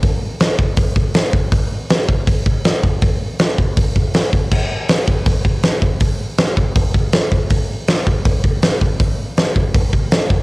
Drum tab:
CC |--------|--------|--------|x-------|
HH |o-o-o-o-|o-o-o-o-|o-o-o-o-|--o-o-o-|
SD |--o---o-|--o---o-|--o---o-|--o---o-|
BD |o--ooo-o|o--ooo-o|o--ooo-o|o--ooo-o|

CC |--------|--------|--------|
HH |o-o-o-o-|o-o-o-o-|o-o-o-o-|
SD |--o---o-|--o---o-|--o---o-|
BD |o--ooo-o|o--ooo-o|o--ooo-o|